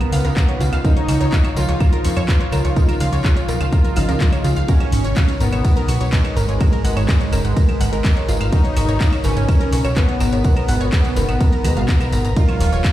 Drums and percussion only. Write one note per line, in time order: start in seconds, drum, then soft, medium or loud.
0.01 closed hi-hat medium
0.01 claves medium
0.12 open hi-hat loud
0.12 tambourine loud
0.24 closed hi-hat medium
0.24 tambourine soft
0.37 kick loud
0.37 clap loud
0.37 closed hi-hat medium
0.37 tambourine medium
0.37 claves medium
0.49 closed hi-hat medium
0.61 open hi-hat medium
0.61 tambourine medium
0.73 closed hi-hat medium
0.73 tambourine soft
0.73 claves medium
0.85 kick loud
0.85 closed hi-hat medium
0.85 tambourine medium
0.97 closed hi-hat medium
1.08 open hi-hat loud
1.08 tambourine medium
1.08 claves medium
1.21 closed hi-hat medium
1.21 tambourine soft
1.32 kick loud
1.32 clap loud
1.32 closed hi-hat medium
1.32 tambourine medium
1.44 closed hi-hat medium
1.44 tambourine soft
1.44 claves medium
1.56 open hi-hat medium
1.56 tambourine loud
1.68 closed hi-hat medium
1.68 tambourine soft
1.80 kick loud
1.80 closed hi-hat medium
1.80 tambourine soft
1.80 claves medium
1.93 closed hi-hat medium
2.04 open hi-hat loud
2.04 tambourine loud
2.16 closed hi-hat medium
2.16 tambourine soft
2.16 claves medium
2.29 kick loud
2.29 clap loud
2.29 closed hi-hat medium
2.29 tambourine medium
2.41 closed hi-hat medium
2.52 open hi-hat medium
2.52 tambourine medium
2.52 claves medium
2.64 closed hi-hat medium
2.64 tambourine soft
2.76 kick loud
2.76 closed hi-hat medium
2.76 tambourine medium
2.89 closed hi-hat medium
2.89 tambourine soft
2.89 claves medium
3.00 open hi-hat loud
3.00 tambourine loud
3.13 closed hi-hat medium
3.13 tambourine soft
3.24 kick loud
3.24 clap loud
3.24 closed hi-hat medium
3.24 tambourine medium
3.24 claves medium
3.37 closed hi-hat medium
3.37 tambourine soft
3.48 open hi-hat medium
3.48 tambourine loud
3.60 closed hi-hat medium
3.60 tambourine soft
3.60 claves medium
3.72 kick loud
3.72 closed hi-hat medium
3.72 tambourine soft
3.85 closed hi-hat medium
3.85 tambourine soft
3.96 open hi-hat loud
3.96 tambourine medium
3.96 claves medium
4.09 closed hi-hat medium
4.09 tambourine soft
4.20 kick loud
4.20 clap loud
4.20 closed hi-hat medium
4.20 tambourine medium
4.32 closed hi-hat medium
4.32 tambourine soft
4.32 claves medium
4.44 open hi-hat medium
4.44 tambourine medium
4.56 closed hi-hat medium
4.56 tambourine soft
4.68 kick loud
4.68 closed hi-hat medium
4.68 ride medium
4.68 tambourine medium
4.80 closed hi-hat medium
4.80 claves medium
4.92 open hi-hat loud
4.92 tambourine medium
5.04 closed hi-hat medium
5.04 tambourine soft
5.16 kick loud
5.16 clap loud
5.16 closed hi-hat medium
5.16 ride medium
5.16 tambourine medium
5.16 claves medium
5.28 closed hi-hat medium
5.28 tambourine soft
5.40 open hi-hat medium
5.40 tambourine medium
5.53 closed hi-hat medium
5.53 tambourine soft
5.53 claves medium
5.65 kick loud
5.65 closed hi-hat medium
5.65 ride medium
5.65 tambourine medium
5.77 closed hi-hat medium
5.88 open hi-hat loud
5.88 tambourine loud
5.88 claves medium
6.01 closed hi-hat medium
6.01 tambourine soft
6.13 kick loud
6.13 clap loud
6.13 closed hi-hat medium
6.13 ride medium
6.13 tambourine medium
6.25 closed hi-hat medium
6.25 claves soft
6.37 open hi-hat medium
6.37 tambourine medium
6.49 closed hi-hat medium
6.49 tambourine soft
6.60 kick loud
6.60 closed hi-hat medium
6.60 ride medium
6.60 tambourine medium
6.60 claves medium
6.73 closed hi-hat medium
6.85 open hi-hat loud
6.85 tambourine medium
6.97 closed hi-hat medium
6.97 tambourine soft
6.97 claves medium
7.09 kick loud
7.09 clap loud
7.09 closed hi-hat medium
7.09 ride medium
7.09 tambourine medium
7.21 closed hi-hat medium
7.21 tambourine soft
7.32 open hi-hat loud
7.32 tambourine loud
7.32 claves medium
7.45 closed hi-hat medium
7.45 tambourine soft
7.57 kick loud
7.57 closed hi-hat medium
7.57 ride medium
7.57 tambourine medium
7.69 closed hi-hat medium
7.69 claves medium
7.81 open hi-hat loud
7.81 tambourine loud
7.93 closed hi-hat medium
7.93 tambourine soft
8.04 kick loud
8.04 clap loud
8.04 closed hi-hat medium
8.04 ride medium
8.04 tambourine medium
8.04 claves medium
8.17 closed hi-hat medium
8.29 open hi-hat loud
8.29 tambourine loud
8.41 closed hi-hat medium
8.41 tambourine soft
8.41 claves medium
8.53 kick loud
8.53 closed hi-hat medium
8.53 ride medium
8.53 tambourine medium
8.65 closed hi-hat medium
8.76 open hi-hat loud
8.76 tambourine loud
8.76 claves medium
8.89 closed hi-hat medium
8.89 tambourine soft
9.00 kick loud
9.00 clap loud
9.00 closed hi-hat medium
9.00 ride medium
9.00 tambourine medium
9.13 closed hi-hat medium
9.13 tambourine soft
9.13 claves medium
9.24 open hi-hat loud
9.24 tambourine loud
9.36 closed hi-hat medium
9.36 tambourine soft
9.48 kick loud
9.48 closed hi-hat medium
9.48 ride medium
9.48 tambourine soft
9.48 claves medium
9.61 closed hi-hat medium
9.72 open hi-hat loud
9.72 tambourine medium
9.85 closed hi-hat medium
9.85 tambourine soft
9.85 claves medium
9.96 kick loud
9.96 clap loud
9.96 closed hi-hat medium
9.96 ride medium
9.96 tambourine medium
10.09 closed hi-hat medium
10.20 open hi-hat loud
10.20 tambourine loud
10.20 claves medium
10.32 closed hi-hat medium
10.32 tambourine soft
10.44 kick loud
10.44 closed hi-hat medium
10.44 ride medium
10.44 tambourine medium
10.57 closed hi-hat medium
10.57 claves medium
10.68 open hi-hat loud
10.68 tambourine medium
10.81 closed hi-hat medium
10.81 tambourine soft
10.93 kick loud
10.93 clap loud
10.93 closed hi-hat medium
10.93 ride medium
10.93 tambourine medium
10.93 claves medium
11.04 closed hi-hat medium
11.04 tambourine soft
11.16 open hi-hat loud
11.16 tambourine loud
11.29 closed hi-hat medium
11.29 tambourine soft
11.29 claves medium
11.40 kick loud
11.40 closed hi-hat medium
11.40 ride medium
11.40 tambourine soft
11.53 closed hi-hat medium
11.64 open hi-hat loud
11.64 tambourine loud
11.64 claves medium
11.77 closed hi-hat medium
11.77 tambourine soft
11.88 kick loud
11.88 clap loud
11.88 closed hi-hat medium
11.88 ride medium
11.88 tambourine medium
12.01 closed hi-hat medium
12.01 tambourine soft
12.01 claves medium
12.12 open hi-hat loud
12.12 tambourine loud
12.25 closed hi-hat medium
12.25 tambourine soft
12.36 kick loud
12.36 closed hi-hat medium
12.36 ride medium
12.36 tambourine medium
12.49 closed hi-hat medium
12.49 claves medium
12.60 open hi-hat loud
12.60 tambourine loud
12.73 closed hi-hat medium
12.73 tambourine soft
12.85 kick loud
12.85 clap loud
12.85 closed hi-hat medium
12.85 ride medium
12.85 tambourine medium
12.85 claves medium